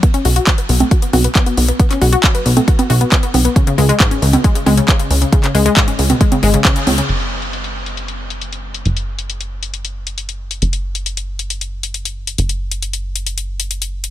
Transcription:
<<
  \new Staff \with { instrumentName = "Synth pluck" } { \clef bass \time 4/4 \key cis \phrygian \tempo 4 = 136 b16 cis'16 fis'16 fis'16 fis16 b'16 b16 a16 fis'16 b16 fis'16 b16 b16 b16 b16 b16 | b16 cis'16 fis'16 fis'16 fis16 b'16 b16 a16 fis'16 b16 fis'16 b16 b16 b16 b16 b16 | cis16 cis16 gis16 gis16 gis,16 cis'16 cis16 b,16 gis16 cis16 gis16 cis16 cis16 cis16 cis16 cis16 | cis16 cis16 gis16 gis16 gis,16 cis'16 cis16 b,16 gis16 cis16 gis16 cis16 cis16 cis16 cis16 cis16 |
r1 | r1 | r1 | r1 | }
  \new Staff \with { instrumentName = "Analog synth bass" } { \clef bass \time 4/4 \key cis \phrygian r8 b,,8 r8 b,,8 r8 b,,8 r8 b,,8 | r8 b,,8 r8 b,,8 r8 b,,8 r8 b,,8 | r8 cis,8 r8 cis,8 r8 cis,8 r8 cis,8 | r8 cis,8 r8 cis,8 r8 gis,,8 r8 cis,8 |
fis,,1 | fis,,1 | fis,,1 | fis,,1 | }
  \new DrumStaff \with { instrumentName = "Drums" } \drummode { \time 4/4 <hh bd>16 hh16 hho16 hh16 <hc hh bd>16 hh16 hho16 <cgho hh>16 <hh bd>16 hh16 <cgho hho>16 hh16 <hc hh bd>16 hh16 hho16 hh16 | <hh bd>16 <hc hh>16 hho16 hh16 <hc hh bd>16 hh16 hho16 <cgho hh>16 <hh bd>16 <cgho hh>16 hho16 hh16 <hc hh bd>16 hh16 <cgho hho>16 hh16 | <hh bd>16 hh16 hho16 hh16 <hc hh bd>16 hh16 hho16 <cgho hh>16 <hh bd>16 hh16 <cgho hho>16 hh16 <hc hh bd>16 hh16 hho16 hh16 | <hh bd>16 <hc hh>16 hho16 hh16 <hc hh bd>16 hh16 hho16 <cgho hh>16 <hh bd>16 <cgho hh>16 hho16 hh16 <hc hh bd>16 hh16 <cgho hho>16 hh16 |
<cymc hh>16 hh8 hh16 hh16 hh8 hh16 hh16 hh8 hh16 hh16 hh8 hh16 | hh16 hh8 hh16 hh16 hh8 hh16 hh16 hh8 hh16 hh16 hh8 hh16 | hh16 hh8 hh16 hh16 hh8 hh16 hh16 hh8 hh16 hh16 hh8 hh16 | hh16 hh8 hh16 hh16 hh8 hh16 hh16 hh8 hh16 hh16 hh8 hh16 | }
>>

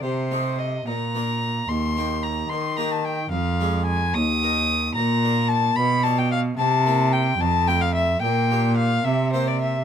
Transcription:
<<
  \new Staff \with { instrumentName = "Violin" } { \time 6/8 \key ees \lydian \tempo 4. = 74 c''4 ees''8 bes''4. | c'''4 bes''8 c'''8 bes''16 a''16 g''8 | f''4 aes''8 ees'''4. | \key c \mixolydian bes''4 a''8 b''8 a''16 g''16 f''8 |
a''4 g''8 a''8 g''16 f''16 e''8 | g''4 f''8 e''8 c''16 d''16 e''8 | }
  \new Staff \with { instrumentName = "Harpsichord" } { \time 6/8 \key ees \lydian r8 <a c' ees'>4 r8 <bes d' f'>4 | r8 <bes ees' g'>4. <bes ees' g'>4 | r8 <aes d' aes'>4 r8 <ees' bes'>4 | \key c \mixolydian r8 <d' bes'>4 r8 <d' f'>4 |
r8 <bes c' e'>4 r8 <a c' f'>4 | r8 <bes d' g'>4 r8 <bes c' g'>4 | }
  \new Staff \with { instrumentName = "Harpsichord" } { \clef bass \time 6/8 \key ees \lydian c4. bes,4. | ees,4. ees4. | f,4. ees,4. | \key c \mixolydian bes,4. b,4. |
c4. f,4. | bes,4. c4. | }
  \new Staff \with { instrumentName = "Cello" } { \clef bass \time 6/8 \key ees \lydian c4. bes,4. | ees,4. ees4. | f,4. ees,4. | \key c \mixolydian bes,4. b,4. |
c4. f,4. | bes,4. c4. | }
>>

